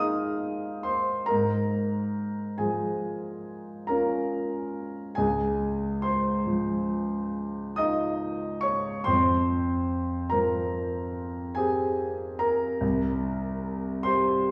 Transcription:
0.00 1.25 G#2 soft
0.00 0.78 F3 soft
0.00 1.26 D#4 soft
0.00 1.25 G#4 soft
0.00 0.85 C5 soft
0.00 0.82 D#5 soft
0.00 1.32 F5 soft
0.00 0.83 C6 medium
0.00 0.85 D#6 medium
0.00 1.32 F6 soft
0.83 1.26 C5 soft
0.83 1.28 C6 medium
1.26 5.16 G#2 soft
1.26 2.56 A#4 soft
1.26 2.59 A#5 medium
2.58 4.67 F3 soft
2.58 3.85 G#4 soft
2.58 3.88 G#5 soft
3.87 5.16 C#4 soft
3.87 5.16 F4 soft
3.87 5.16 A#4 soft
3.87 5.19 A#5 soft
5.15 9.03 C#2 soft
5.15 6.00 G#4 soft
5.15 6.04 G#5 medium
6.02 7.75 C5 soft
6.02 7.79 C6 medium
6.46 8.55 F3 soft
7.76 9.03 D#4 soft
7.76 9.04 F4 soft
7.76 8.60 D#5 soft
7.76 8.63 D#6 medium
8.61 9.04 C#5 soft
8.61 9.06 C#6 medium
9.04 12.77 F2 soft
9.04 10.29 C5 medium
9.04 10.33 C6 medium
10.30 12.32 F3 soft
10.30 11.52 A#4 soft
10.30 11.55 A#5 medium
11.55 12.78 C4 soft
11.55 12.78 G4 soft
11.55 12.37 G#4 soft
11.55 12.40 G#5 medium
12.39 14.03 A#4 soft
12.39 14.06 A#5 medium
12.81 14.51 C2 soft
14.03 14.51 G3 soft
14.03 14.51 C5 medium
14.03 14.51 C6 medium

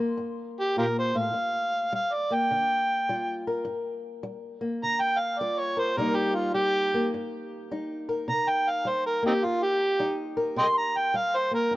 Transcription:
0.00 0.15 G3 medium
0.00 2.30 A#3 medium
0.17 0.72 G2 medium
0.60 0.77 G4 medium
0.77 1.14 A#2 medium
0.77 0.85 F4 medium
0.77 0.86 G4 medium
0.77 0.96 A#4 medium
0.99 1.19 C5 medium
1.15 1.33 A2 medium
1.15 1.92 F5 medium
1.34 1.88 G2 medium
1.93 2.47 G3 medium
1.93 2.15 F5 medium
2.13 2.36 D5 medium
2.31 4.61 A#3 medium
2.31 3.45 G5 loud
2.51 3.05 D3 medium
3.09 3.63 G3 medium
3.09 3.65 F4 medium
3.47 5.76 A#4 medium
3.65 4.19 G2 medium
4.23 4.77 G3 medium
4.61 5.99 A#3 medium
4.83 5.36 D3 medium
4.83 5.02 A#5 loud
5.01 5.21 G5 loud
5.20 5.41 F5 medium
5.39 5.94 G3 medium
5.39 5.96 F4 medium
5.39 5.61 D5 medium
5.59 5.81 C#5 loud
5.77 6.00 A#4 medium
5.77 5.99 C5 medium
5.97 6.51 C3 medium
5.97 6.54 G3 medium
5.97 6.94 A#3 medium
5.97 7.71 D#4 medium
5.97 6.17 A#4 loud
6.15 6.36 G4 medium
6.35 6.54 F4 medium
6.54 7.08 G3 medium
6.54 7.11 G4 loud
6.94 9.22 A#3 medium
7.14 7.67 G2 medium
7.71 8.24 G3 medium
7.71 10.00 D#4 medium
8.09 8.31 A#4 medium
8.28 8.81 C3 medium
8.28 8.50 A#5 loud
8.49 8.72 G5 medium
8.70 8.90 F5 medium
8.85 9.38 G3 medium
8.85 9.05 C5 medium
9.06 9.24 A#4 medium
9.23 11.51 A#3 medium
9.23 9.32 C4 medium
9.23 9.33 D#4 medium
9.23 9.46 G4 medium
9.44 9.96 G2 medium
9.44 9.64 F4 loud
9.63 10.18 G4 loud
10.00 10.53 G3 medium
10.00 10.55 D#4 medium
10.37 10.59 A#4 medium
10.56 11.10 C3 medium
10.56 10.67 D#5 medium
10.56 10.65 G5 medium
10.56 10.76 C6 loud
10.77 10.98 A#5 loud
10.97 11.18 G5 medium
11.14 11.67 G3 medium
11.14 11.38 F5 loud
11.36 11.54 C5 medium
11.51 11.76 A#3 medium
11.51 11.72 A#4 loud
11.71 11.76 G2 medium

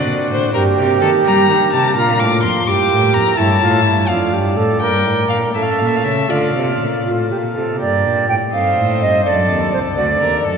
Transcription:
0.00 0.49 C4 medium
0.00 0.49 D4 soft
0.00 0.51 D4 medium
0.00 0.51 F#4 soft
0.00 0.29 D5 medium
0.06 0.14 A#2 medium
0.06 0.28 A#2 soft
0.30 0.51 A2 medium
0.30 0.38 A2 medium
0.30 0.53 C5 medium
0.50 0.77 G2 medium
0.50 1.89 A#3 soft
0.50 1.91 D4 soft
0.50 1.91 G4 medium
0.50 1.93 G4 medium
0.54 0.75 G2 medium
0.54 0.62 A#4 medium
0.77 1.00 C3 medium
0.77 0.99 C3 medium
0.77 1.00 G4 medium
1.01 1.09 D#3 medium
1.01 1.23 D#3 medium
1.01 1.09 A4 medium
1.25 1.48 G3 medium
1.25 1.47 G3 medium
1.25 1.71 A#5 medium
1.49 1.57 D#3 medium
1.49 1.70 D#3 medium
1.72 1.93 C3 medium
1.72 1.95 C3 medium
1.72 1.96 A5 medium
1.91 2.60 A#3 soft
1.91 2.63 D4 soft
1.91 2.64 F4 soft
1.96 2.17 A#2 medium
1.96 2.21 A#2 medium
1.96 2.41 F4 medium
1.96 2.21 A#5 medium
2.20 2.42 A2 medium
2.20 2.41 A2 medium
2.20 2.43 D6 medium
2.43 2.51 F2 medium
2.43 2.64 F2 medium
2.43 2.69 C6 medium
2.62 2.87 A#3 soft
2.62 3.33 E4 medium
2.62 3.35 A#4 medium
2.67 2.88 G2 medium
2.67 2.75 G2 medium
2.67 3.34 G4 medium
2.67 3.15 D6 medium
2.91 3.14 A2 medium
2.91 3.12 A2 medium
3.14 3.35 F2 medium
3.14 3.23 F2 medium
3.14 3.39 A#5 medium
3.34 4.03 A3 medium
3.34 4.06 E4 soft
3.34 3.61 E4 medium
3.34 4.07 C#5 medium
3.34 4.10 A5 medium
3.38 3.61 G2 medium
3.38 3.59 G2 medium
3.62 3.87 A2 medium
3.62 3.83 A2 medium
3.62 3.84 F4 medium
3.85 4.07 G2 medium
3.85 4.08 G2 medium
3.85 4.08 E4 medium
4.05 4.30 A3 medium
4.05 4.76 D4 medium
4.05 4.78 D5 soft
4.09 4.17 F2 medium
4.09 4.31 F2 medium
4.09 4.35 F4 medium
4.09 4.33 F5 medium
4.33 4.57 G2 medium
4.33 4.55 G2 medium
4.33 4.58 G4 medium
4.57 4.81 A2 medium
4.57 4.79 A2 medium
4.57 4.81 A4 medium
4.77 5.03 A#3 soft
4.77 5.03 D4 medium
4.77 5.51 D5 soft
4.77 5.26 G5 medium
4.81 5.06 G2 medium
4.81 5.03 G2 medium
4.81 5.53 A#4 medium
5.05 5.29 A2 medium
5.05 5.27 A2 medium
5.29 5.51 A#2 medium
5.29 5.53 A#2 medium
5.29 5.38 F5 medium
5.50 5.62 A2 medium
5.50 6.23 A3 soft
5.50 6.26 C#4 soft
5.50 6.26 A4 soft
5.54 5.77 A2 soft
5.54 6.31 A4 medium
5.54 5.64 E5 medium
5.63 5.72 F5 medium
5.70 5.80 E5 medium
5.79 6.06 A#2 medium
5.79 6.02 A#2 soft
5.79 5.89 F5 medium
5.87 5.98 E5 medium
5.96 6.06 F5 medium
6.04 6.29 C#3 medium
6.04 6.27 C#3 soft
6.04 6.31 E5 medium
6.25 6.52 A3 soft
6.25 7.75 F4 soft
6.25 7.76 A4 soft
6.29 6.55 D3 medium
6.29 6.53 D3 soft
6.29 6.82 F4 medium
6.29 7.06 D5 medium
6.55 6.78 C3 soft
6.55 6.80 C3 medium
6.80 7.03 A#2 soft
6.80 7.05 A#2 medium
7.05 7.28 A2 soft
7.05 7.32 A2 soft
7.05 7.29 F4 medium
7.30 7.58 A#2 medium
7.30 7.54 A#2 soft
7.30 7.37 G4 medium
7.56 7.78 C3 soft
7.56 7.81 C3 soft
7.56 7.80 A4 medium
7.75 8.25 A#3 soft
7.75 8.26 D4 soft
7.75 8.51 G4 soft
7.80 8.03 G2 soft
7.80 8.07 G2 medium
7.80 8.26 D5 medium
8.05 8.27 A#2 soft
8.05 8.29 A#2 medium
8.29 8.51 A2 soft
8.29 8.38 A2 medium
8.29 8.35 G5 medium
8.49 9.19 C4 soft
8.49 9.22 D#4 soft
8.49 9.22 A4 soft
8.49 9.01 F5 medium
8.54 8.78 G2 medium
8.54 8.76 G2 soft
8.54 9.28 C5 medium
8.78 9.04 A2 medium
8.78 9.00 A2 soft
9.02 9.25 G2 soft
9.02 9.24 G2 soft
9.02 9.24 D#5 medium
9.21 9.47 C4 soft
9.21 10.57 D4 soft
9.21 10.57 A4 soft
9.21 9.72 D5 medium
9.26 9.47 F#2 soft
9.26 9.49 F#2 medium
9.26 9.97 A4 medium
9.49 9.75 D#2 medium
9.49 9.71 D#2 medium
9.73 9.97 C2 medium
9.73 9.95 C2 soft
9.73 9.79 C5 medium
9.97 10.21 D2 medium
9.97 10.19 D2 soft
9.97 10.06 F#4 medium
9.97 10.37 D5 medium
10.21 10.42 D#2 medium
10.21 10.44 D#2 medium
10.21 10.46 A#4 medium
10.44 10.57 F#2 soft
10.44 10.52 F#2 medium
10.44 10.57 A4 medium

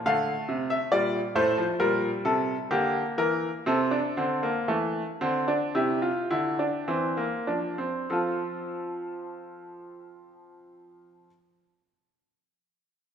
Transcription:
0.06 0.32 D3 medium
0.06 0.89 A3 medium
0.06 0.68 F5 medium
0.49 0.75 C3 medium
0.70 0.91 E5 medium
0.92 1.19 A#2 medium
0.92 1.19 G3 medium
0.92 1.19 D5 medium
1.35 1.63 A2 medium
1.35 1.57 A3 medium
1.35 1.63 C5 medium
1.58 1.79 F3 medium
1.80 2.08 A#2 medium
1.80 2.69 G3 medium
1.80 2.08 A#4 medium
2.25 2.54 C3 medium
2.25 2.54 A4 medium
2.71 3.00 D3 medium
2.71 3.64 A#3 medium
2.71 3.00 G4 medium
3.18 3.48 E3 medium
3.18 3.48 A#4 medium
3.66 3.98 C3 medium
3.66 3.91 C4 medium
3.66 5.71 A4 medium
3.91 4.16 D4 medium
4.17 4.49 D3 medium
4.17 4.42 C4 medium
4.43 4.68 A#3 medium
4.68 5.01 E3 medium
4.68 5.01 A3 medium
5.21 5.55 D3 medium
5.21 5.47 C4 medium
5.48 5.75 D4 medium
5.75 6.10 C3 medium
5.75 6.02 E4 medium
5.75 8.06 G4 medium
6.02 6.30 F4 medium
6.31 6.66 D3 medium
6.31 6.58 E4 medium
6.59 6.87 D4 medium
6.88 7.25 E3 medium
6.88 7.17 C4 medium
7.17 7.47 A#3 medium
7.47 7.87 F3 medium
7.47 7.78 D4 medium
7.78 8.08 C4 medium
8.10 11.27 F3 medium
8.10 11.26 C4 medium
8.10 11.29 F4 medium
8.10 11.26 A4 medium

